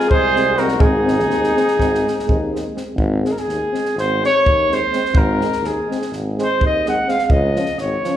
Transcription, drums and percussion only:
0.00 snare
0.11 kick
0.36 snare
0.57 snare
0.68 snare
0.80 kick
1.08 snare
1.20 snare
1.31 snare
1.44 snare
1.57 snare
1.68 snare
1.79 kick, snare
1.95 snare
2.08 snare
2.19 snare
2.29 kick
2.56 snare
2.77 snare
2.98 kick
3.25 snare
3.37 snare
3.49 snare
3.75 snare
3.85 snare
3.98 snare
4.24 snare
4.46 kick
4.72 snare
4.93 snare
5.05 snare
5.15 kick
5.41 snare
5.52 snare
5.64 snare
5.91 snare
6.02 snare
6.13 snare
6.39 snare
6.61 kick
6.86 snare
7.09 snare
7.19 snare
7.30 kick
7.56 snare
7.66 snare
7.78 snare
8.04 snare

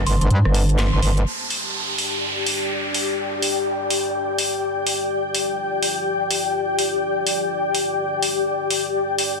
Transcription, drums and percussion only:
0.06 open hi-hat
0.21 closed hi-hat
0.30 closed hi-hat
0.45 cross-stick
0.54 open hi-hat
0.69 closed hi-hat
0.79 snare, closed hi-hat
1.02 open hi-hat
1.17 closed hi-hat
1.50 open hi-hat
1.98 open hi-hat
2.46 open hi-hat
2.94 open hi-hat
3.42 open hi-hat
3.90 open hi-hat
4.39 open hi-hat
4.87 open hi-hat
5.35 open hi-hat
5.83 open hi-hat
6.31 open hi-hat
6.79 open hi-hat
7.27 open hi-hat
7.75 open hi-hat
8.23 open hi-hat
8.71 open hi-hat
9.19 open hi-hat

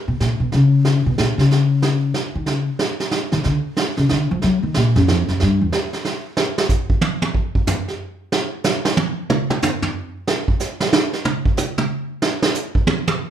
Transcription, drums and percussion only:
0.20 snare
0.52 brush sweep, snare
0.85 snare
1.18 snare
1.39 snare
1.51 brush sweep, snare
1.82 snare
2.14 snare
2.46 brush sweep, snare
2.79 snare
3.00 snare
3.11 snare
3.32 snare
3.44 brush sweep, snare
3.77 snare
3.97 snare
4.09 snare
4.42 brush sweep, snare
4.74 snare
4.96 snare
5.08 snare
5.28 snare
5.40 brush sweep, snare
5.72 snare
5.93 snare
6.05 snare
6.37 snare
6.58 snare
6.69 kick, hi-hat pedal
6.90 kick
7.01 high tom
7.22 high tom
7.35 kick
7.55 kick
7.67 floor tom, hi-hat pedal
7.88 snare
8.32 snare
8.64 snare, hi-hat pedal
8.85 snare
8.97 high tom
9.30 mid tom
9.50 mid tom
9.62 floor tom, hi-hat pedal
9.82 floor tom
10.27 snare
10.48 kick
10.60 snare, hi-hat pedal
10.80 snare
10.93 snare
11.13 snare
11.25 mid tom
11.45 kick
11.57 hi-hat pedal, mid tom
11.78 mid tom
12.22 snare
12.42 snare
12.54 hi-hat pedal
12.75 kick
12.87 high tom
13.08 high tom

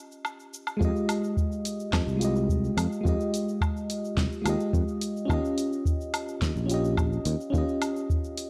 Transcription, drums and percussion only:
0.12 shaker
0.25 low woodblock, shaker
0.40 shaker
0.54 shaker
0.67 low woodblock, shaker
0.81 kick, shaker
0.96 shaker
1.09 open hi-hat, low woodblock, shaker
1.24 shaker
1.37 kick, shaker
1.52 shaker
1.65 open hi-hat, shaker
1.80 shaker
1.93 kick, snare, low woodblock, shaker
2.08 shaker
2.21 open hi-hat, shaker
2.36 shaker
2.49 kick, shaker
2.64 shaker
2.78 open hi-hat, low woodblock, shaker
2.92 shaker
3.05 kick, shaker
3.21 shaker
3.34 open hi-hat, shaker
3.48 shaker
3.61 kick, low woodblock, shaker
3.77 shaker
3.90 open hi-hat, shaker
4.05 shaker
4.17 kick, snare, shaker
4.33 shaker
4.46 open hi-hat, low woodblock, shaker
4.60 shaker
4.73 kick, shaker
4.88 shaker
5.01 open hi-hat, shaker
5.17 shaker
5.29 kick, low woodblock, shaker
5.45 shaker
5.58 open hi-hat, shaker
5.73 shaker
5.85 kick, shaker
6.01 shaker
6.14 open hi-hat, low woodblock, shaker
6.29 shaker
6.42 kick, snare, shaker
6.57 shaker
6.69 open hi-hat, shaker
6.84 shaker
6.97 kick, low woodblock, shaker
7.13 shaker
7.25 open hi-hat, shaker
7.40 shaker
7.54 kick, shaker
7.69 shaker
7.82 open hi-hat, low woodblock, shaker
7.96 shaker
8.10 kick, shaker
8.24 shaker
8.37 open hi-hat, shaker

